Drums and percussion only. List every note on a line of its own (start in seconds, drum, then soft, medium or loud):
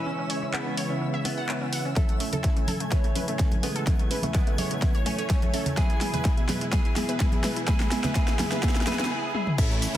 0.30 open hi-hat medium
0.53 clap loud
0.77 open hi-hat medium
1.25 open hi-hat loud
1.49 clap loud
1.73 open hi-hat medium
1.96 kick loud
1.96 snare soft
1.96 closed hi-hat medium
1.96 high conga medium
2.09 closed hi-hat soft
2.20 open hi-hat loud
2.33 closed hi-hat medium
2.33 high conga medium
2.33 low conga medium
2.44 kick loud
2.44 snare soft
2.44 closed hi-hat medium
2.57 closed hi-hat soft
2.67 open hi-hat medium
2.67 high conga medium
2.80 closed hi-hat medium
2.92 kick loud
2.92 snare medium
2.92 closed hi-hat medium
3.04 closed hi-hat soft
3.15 open hi-hat loud
3.15 high conga medium
3.28 closed hi-hat medium
3.39 kick loud
3.39 snare medium
3.39 closed hi-hat medium
3.52 closed hi-hat soft
3.52 high conga medium
3.63 open hi-hat medium
3.76 closed hi-hat medium
3.87 kick loud
3.87 snare medium
3.87 closed hi-hat medium
3.87 high conga medium
3.99 closed hi-hat soft
4.11 open hi-hat loud
4.22 closed hi-hat medium
4.22 high conga medium
4.22 low conga medium
4.34 kick loud
4.34 snare medium
4.34 closed hi-hat medium
4.47 closed hi-hat soft
4.58 open hi-hat medium
4.58 high conga loud
4.71 closed hi-hat soft
4.82 kick loud
4.82 snare medium
4.82 closed hi-hat medium
4.95 closed hi-hat soft
5.06 open hi-hat loud
5.06 high conga medium
5.18 closed hi-hat medium
5.30 kick loud
5.30 snare medium
5.30 closed hi-hat medium
5.42 closed hi-hat soft
5.42 high conga medium
5.54 open hi-hat medium
5.66 closed hi-hat medium
5.66 low conga loud
5.77 kick loud
5.77 snare medium
5.77 closed hi-hat medium
5.77 high conga medium
5.90 closed hi-hat soft
6.01 snare medium
6.01 open hi-hat loud
6.13 closed hi-hat soft
6.13 high conga medium
6.13 low conga medium
6.25 kick loud
6.25 snare medium
6.25 closed hi-hat medium
6.37 closed hi-hat soft
6.49 snare medium
6.49 open hi-hat loud
6.49 high conga loud
6.61 closed hi-hat soft
6.73 kick loud
6.73 snare medium
6.73 closed hi-hat medium
6.85 closed hi-hat soft
6.96 snare medium
6.96 open hi-hat loud
6.96 high conga medium
7.09 closed hi-hat medium
7.20 kick loud
7.20 snare medium
7.20 closed hi-hat medium
7.32 closed hi-hat soft
7.32 high conga medium
7.44 snare medium
7.44 open hi-hat loud
7.56 closed hi-hat medium
7.68 kick loud
7.68 snare medium
7.68 closed hi-hat medium
7.68 high conga medium
7.80 snare medium
7.80 closed hi-hat soft
7.92 snare medium
7.92 open hi-hat loud
8.04 snare medium
8.04 closed hi-hat soft
8.04 high conga medium
8.04 low conga medium
8.15 kick loud
8.15 snare loud
8.15 closed hi-hat medium
8.28 snare medium
8.28 closed hi-hat soft
8.39 snare loud
8.39 open hi-hat medium
8.39 high conga loud
8.52 snare medium
8.52 closed hi-hat soft
8.63 kick loud
8.63 snare loud
8.63 closed hi-hat medium
8.69 snare loud
8.76 snare medium
8.76 closed hi-hat soft
8.81 snare medium
8.87 snare loud
8.87 open hi-hat loud
8.87 high conga medium
8.93 snare medium
8.99 snare medium
8.99 closed hi-hat soft
9.05 snare medium
9.35 high tom medium
9.47 mid tom medium
9.58 kick loud
9.58 closed hi-hat medium
9.58 crash loud
9.58 cabasa soft
9.71 cabasa soft
9.71 high woodblock soft
9.82 open hi-hat loud
9.82 cabasa medium